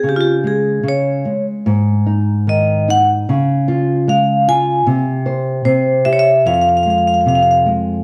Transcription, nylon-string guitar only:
X:1
M:2/4
L:1/8
Q:1/4=75
K:Dblyd
V:1 name="Nylon-string guitar" clef=bass
D, A, D, A, | A,, E E, E | D, F A, F | C, c C, G |
F,, A, C, A, |]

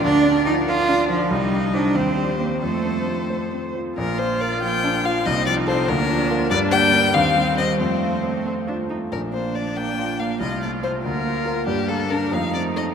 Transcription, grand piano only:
X:1
M:6/8
L:1/8
Q:3/8=93
K:Bb
V:1 name="Grand piano"
D,, D F, B D F, | C,, G, [Ec] E,, G, [Cc] | F,, C F, c C F, | B,,, F, B F, D F, |
C,, F, [FA] D,, F, [FB] | G,, G, [DB] E,, G, [Cc] | F,, A, c A, F A, | B,,, B, d B, F B, |
C,, A, [Fc] D,, B, [FB] | G,, B, [DB] F,, C [EA] |]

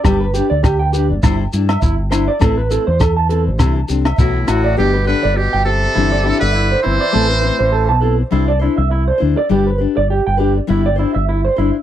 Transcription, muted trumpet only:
X:1
M:4/4
L:1/16
Q:"Swing 16ths" 1/4=102
K:G
V:1 name="Muted trumpet"
z16 | z12 E2 F2 | G2 B2 G2 A4- A B3 c2- | c6 z8 z2 |
z16 |]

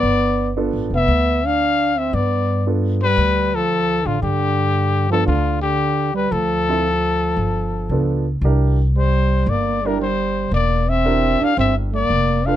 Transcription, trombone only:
X:1
M:4/4
L:1/8
Q:"Swing" 1/4=114
K:Gmix
V:1 name="Trombone" clef=bass
B,2 z B,2 D2 C | B,2 z G,2 F,2 D, | D,3 F, D, D,2 G, | F,6- F, z |
z2 G,2 _B, G, G,2 | _B, C2 D C B,2 D |]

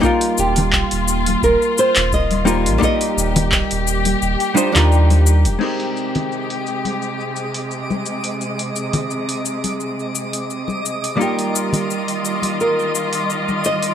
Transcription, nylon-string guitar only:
X:1
M:4/4
L:1/8
Q:"Swing 16ths" 1/4=86
K:Ablyd
V:1 name="Nylon-string guitar"
F G3 B c e2 | e6 z2 | z8 | z8 |
G4 B3 e |]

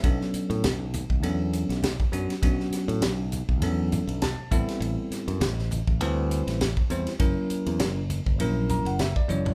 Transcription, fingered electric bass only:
X:1
M:4/4
L:1/16
Q:"Swing 16ths" 1/4=100
K:Ador
V:1 name="Fingered electric bass" clef=bass
B,,, z2 A,, B,,,3 B,,, E,,3 B,,,2 z F,, z | B,,, z2 A,, B,,,3 B,,, E,,3 B,,,2 z A,,, z | A,,, z2 F,, A,,,3 A,,, D,,3 A,,,2 z E,, z | F,,, z2 E,, F,,,3 F,,, ^A,,,3 F,,,2 z F,,, A,,, |]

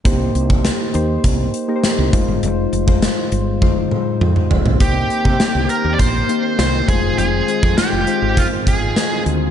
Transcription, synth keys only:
X:1
M:4/4
L:1/16
Q:1/4=101
K:Cm
V:1 name="Synth keys"
[B,EGc]4- [B,EGc] z [B,EGc]4 z [B,EGBc]3 [A,EFc]2- | [A,EFc]2 z [A,EFc]4 z [A,EFc]6 z2 | [B,EGc]2 z [B,EGc]4- [B,EGc] z2 [B,EGc]4 [A,EFc]2- | [A,EFc] z [A,EFc]3 z [A,EFc]6 z4 |]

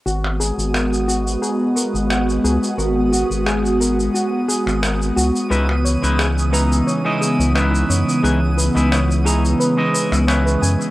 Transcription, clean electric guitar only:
X:1
M:4/4
L:1/16
Q:"Swing 16ths" 1/4=88
K:G#m
V:1 name="Clean electric guitar"
z16 | z16 | [G,CDEB] z2 [G,CDEB] z2 [G,CDEa]3 [G,CDEd]3 [G,CDEB]4 | [G,CDEB] z2 [G,CDEB] z2 [G,CDEa]3 [G,CDEd]3 [G,CEB]4 |]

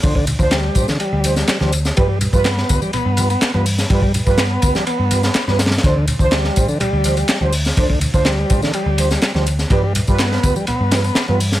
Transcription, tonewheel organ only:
X:1
M:4/4
L:1/16
Q:1/4=124
K:Ddor
V:1 name="Tonewheel organ" clef=bass
D, D, z2 G,3 D, G,3 G, G, G, z2 | G, G, z2 B,3 G, B,3 B, B, B, z2 | G, G, z2 B,3 G, B,3 B, B, B, z2 | D, D, z2 G,3 D, G,3 G, G, G, z2 |
D, D, z2 G,3 D, G,3 G, G, G, z2 | G, G, z2 B,3 G, B,3 B, B, B, z2 |]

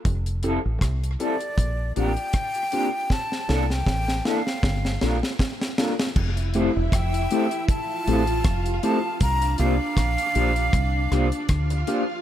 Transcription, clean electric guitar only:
X:1
M:4/4
L:1/8
Q:"Swing 16ths" 1/4=79
K:F
V:1 name="Clean electric guitar"
z [G,CEA] z [G,CEA] z [B,DGB] z [B,DGB] | z [E,B,DA] z [E,B,DA] z [G,DFB] z [G,DFB] | z [CEAc] z [CEAc] z [CEAc] z [CEAc] | z [B,DFc] z [B,DFc] z [B,DFc] z [B,DFc] |]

